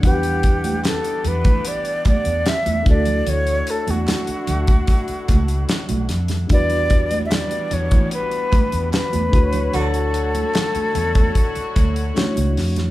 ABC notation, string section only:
X:1
M:4/4
L:1/8
Q:1/4=74
K:D
V:1 name="String section"
[E,B,DGf]6- [E,B,DGf] [A,DE]- | [A,DE]8 | [E,G,B,DF]6- [E,G,B,DF] [D,A,EFc]- | [D,A,EFc]8 |]